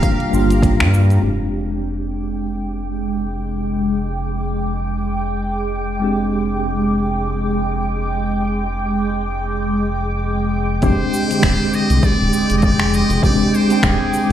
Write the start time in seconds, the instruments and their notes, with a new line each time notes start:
Already playing: tine electric piano G3 A#3 D4 F4, string machine G4 F5 A#5, muted trumpet F5
0.03 kick, closed hi-hat, shaker
0.20 closed hi-hat
0.30 analog synth bass G1, tine electric piano G3 A#3 D4 F4, shaker
0.50 closed hi-hat, shaker
0.62 kick, closed hi-hat, shaker
0.80 analog synth bass G2, finger snap
0.94 shaker
1.10 closed hi-hat, shaker
1.20 analog synth bass F1, tine electric piano G#3 C4 D4, string machine G#3 G5 D6
1.24 tine electric piano G4
1.54 shaker
1.71 shaker
2.31 shaker
2.73 shaker
2.91 shaker
3.33 shaker
3.50 shaker
3.93 shaker
4.53 shaker
5.13 shaker
5.73 shaker
6.00 tine electric piano G#3 C4 D4
6.04 tine electric piano G4
6.33 shaker
6.50 shaker
6.93 shaker
7.10 shaker
7.23 shaker
7.53 shaker
7.71 shaker
7.83 shaker
8.14 shaker
8.31 shaker
8.74 shaker
8.91 shaker
9.33 shaker
9.50 shaker
9.63 shaker
9.93 shaker
10.10 shaker
10.23 shaker
10.53 shaker
10.70 shaker
10.81 analog synth bass F1, tine electric piano G#3 C4 D4 G4, string machine G#3 G5 D6, muted trumpet C5, kick, closed hi-hat, shaker
11.14 shaker
11.28 tine electric piano D3 G#3 C4, closed hi-hat, shaker
11.32 tine electric piano G4
11.43 analog synth bass D1, finger snap, kick, closed hi-hat, shaker
11.73 muted trumpet D#5, shaker
11.90 analog synth bass C2, closed hi-hat, shaker
12.03 muted trumpet D5, kick, closed hi-hat, shaker
12.21 analog synth bass D1
12.33 shaker
12.50 analog synth bass F1, closed hi-hat, shaker
12.58 muted trumpet D#5
12.62 muted trumpet D5, kick, closed hi-hat, shaker
12.80 finger snap
12.94 muted trumpet D#5, shaker
13.10 analog synth bass F1, closed hi-hat, shaker
13.22 analog synth bass F1, tine electric piano G#3 C4 D4 G4, muted trumpet D5, kick, closed hi-hat, shaker
13.54 muted trumpet C5, shaker
13.68 tine electric piano G#3 C4 D4, closed hi-hat, shaker
13.72 tine electric piano G5
13.83 analog synth bass D1, muted trumpet G#4, finger snap, kick, closed hi-hat, shaker
14.14 shaker